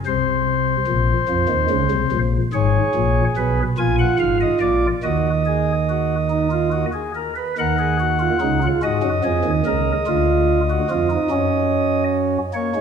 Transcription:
0.06 C2 C3 C5
0.87 A#1 A#2
1.29 F2 F3
1.49 D#2 D#3
1.70 C#2 C#3
1.91 C2 C3
2.12 A#1 A#2
2.53 G#1 G#2 G#4 C#5
2.95 A#1 A#2
3.36 B1 B2 B4
3.78 A#1 A#2 F4 G#5
3.99 F#5
4.19 G#1 G#2 F5
4.40 D#5
4.60 A#1 A#2 D5
5.03 D#2 D#3 F#4 D#5
5.46 G#4
5.89 F#4
6.31 D#4
6.51 F4
6.72 F#4
6.93 G#4
7.15 A#4
7.36 B4
7.58 D#2 D#3 A#4 F#5
7.79 G#4
8.00 F#4
8.20 F4
8.41 C#2 C#3 D#4
8.63 F4
8.82 G#2 G#3 F#4 D#5
9.03 F#2 F#3
9.24 F2 F3 G#4
9.45 D#2 D#3
9.66 C#2 C#3 A#4
10.07 D2 D3 F4
10.70 F#4
10.90 F2 F3 F4
11.11 D#4
11.30 F#2 F#3 C#4
12.54 A#3 C#5
12.75 G#2 G#3

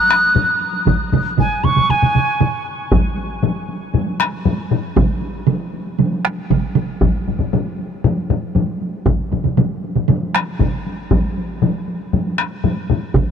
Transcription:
Already playing: F#6
0.10 taiko rim, taiko high
0.23 taiko high
0.35 taiko low-mid, taiko high
0.60 taiko high
0.73 taiko high
0.86 taiko, taiko low-mid, taiko mid, taiko high
1.12 taiko low-mid, taiko mid, taiko high
1.25 taiko high
1.37 G#5, taiko, taiko low-mid, taiko mid, taiko high
1.63 C#6, taiko low-mid, taiko mid, taiko high
1.76 taiko low-mid, taiko mid, taiko high
1.89 G#5, taiko low-mid, taiko mid
2.02 taiko low-mid, taiko mid
2.15 taiko low-mid, taiko mid
2.40 taiko low-mid, taiko mid
2.92 taiko, taiko low-mid, taiko high
3.05 taiko high
3.17 taiko high
3.30 taiko high
3.43 taiko low-mid, taiko high
3.56 taiko high
3.68 taiko high
3.81 taiko high
3.94 taiko low-mid, taiko high
4.07 taiko high
4.20 taiko rim, taiko high
4.33 taiko high
4.45 taiko low-mid, taiko high
4.58 taiko high
4.71 taiko low-mid, taiko high
4.84 taiko high
4.96 taiko, taiko mid, taiko high
5.09 taiko high
5.21 taiko high
5.35 taiko high
5.47 taiko mid, taiko high
5.61 taiko high
5.74 taiko high
5.87 taiko high
5.99 taiko mid, taiko high
6.13 taiko high
6.25 taiko rim, taiko high
6.38 taiko high
6.50 taiko, taiko mid, taiko high
6.63 taiko high
6.75 taiko mid, taiko high
6.89 taiko high
7.01 taiko, taiko low-mid, taiko high
7.15 taiko high
7.28 taiko low-mid, taiko high
7.40 taiko low-mid, taiko high
7.53 taiko low-mid, taiko high
7.66 taiko high
7.79 taiko high
7.92 taiko high
8.04 taiko low-mid, taiko high
8.17 taiko high
8.29 taiko low-mid, taiko high
8.43 taiko high
8.55 taiko low-mid, taiko high
8.68 taiko high
8.81 taiko high
8.94 taiko high
9.06 taiko, taiko low-mid, taiko mid, taiko high
9.20 taiko high
9.32 taiko low-mid, taiko mid, taiko high
9.45 taiko low-mid, taiko mid, taiko high
9.57 taiko low-mid, taiko mid, taiko high
9.71 taiko high
9.84 taiko high
9.96 taiko low-mid, taiko mid, taiko high
10.09 taiko low-mid, taiko mid, taiko high
10.23 taiko high
10.35 taiko rim, taiko high
10.49 taiko high
10.59 taiko, taiko low-mid, taiko mid, taiko high
10.74 taiko high
10.86 taiko high
10.99 taiko high
11.11 taiko, taiko low-mid, taiko high
11.25 taiko high
11.38 taiko high
11.50 taiko high
11.62 taiko low-mid, taiko high
11.88 taiko high
12.01 taiko high
12.13 taiko low-mid, taiko high
12.26 taiko high
12.38 taiko rim, taiko high
12.52 taiko high
12.64 taiko low-mid, taiko high
12.77 taiko high
12.90 taiko low-mid, taiko high
13.04 taiko high
13.14 taiko, taiko mid, taiko high

